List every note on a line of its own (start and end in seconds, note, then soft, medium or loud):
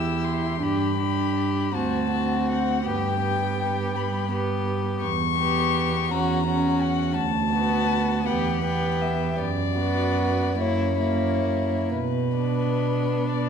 0.00 0.48 E2 soft
0.00 0.60 E4 soft
0.00 0.59 G4 soft
0.00 0.26 E6 soft
0.24 0.64 C6 soft
0.61 1.61 G2 soft
0.61 0.98 D4 soft
0.61 0.97 G4 soft
0.61 1.76 B5 medium
0.98 1.73 D4 soft
0.98 1.72 G4 soft
1.74 2.73 D2 soft
1.74 2.11 C4 soft
1.74 2.10 F#4 soft
1.74 2.49 A5 medium
2.11 2.85 C4 soft
2.11 2.84 F#4 soft
2.49 2.87 F#5 medium
2.84 3.84 G2 soft
2.84 3.22 B3 soft
2.84 3.21 G4 soft
2.84 3.97 G5 medium
3.22 4.29 B3 soft
3.22 4.29 G4 soft
3.96 4.90 G2 soft
3.96 4.31 B5 soft
4.32 5.01 B3 soft
4.32 5.02 G4 soft
5.01 5.99 E2 soft
5.01 6.13 C#6 medium
5.38 6.10 B3 soft
5.38 6.09 G4 soft
6.11 7.05 E2 soft
6.11 6.47 C#4 soft
6.11 6.46 F#4 soft
6.11 6.83 A#5 medium
6.47 7.15 C#4 soft
6.47 7.15 F#4 soft
6.82 7.15 F#5 medium
7.16 8.14 D2 soft
7.16 8.27 A5 medium
7.53 8.25 B3 soft
7.53 8.26 F#4 soft
8.26 9.27 E2 medium
8.26 8.62 B3 soft
8.26 8.63 G4 soft
8.26 9.03 F#5 medium
8.63 9.37 B3 soft
8.63 9.38 G4 soft
9.01 9.39 E5 medium
9.40 10.45 F#2 medium
9.40 10.62 D5 medium
9.78 10.58 B3 soft
9.78 10.57 F#4 soft
10.58 11.76 F#2 soft
10.58 11.00 A#3 soft
10.58 11.00 E4 soft
10.58 11.92 C#5 medium
11.00 11.91 A#3 soft
11.00 11.90 E4 soft
11.93 13.14 B2 soft
11.93 13.28 B4 medium
12.38 13.49 B3 soft
12.38 13.49 D4 soft
13.30 13.49 B2 soft
13.30 13.49 D5 soft